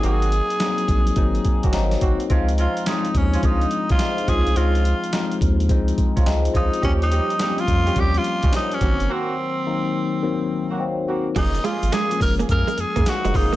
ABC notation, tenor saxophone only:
X:1
M:4/4
L:1/16
Q:"Swing 16ths" 1/4=106
K:Db
V:1 name="Tenor saxophone"
A12 z4 | z2 F2 E2 D2 E3 F3 A2 | F6 z8 E2 | D E3 E F3 =G F3 E D3 |
C12 z4 | E2 F2 A2 B2 B2 A2 G2 E2 |]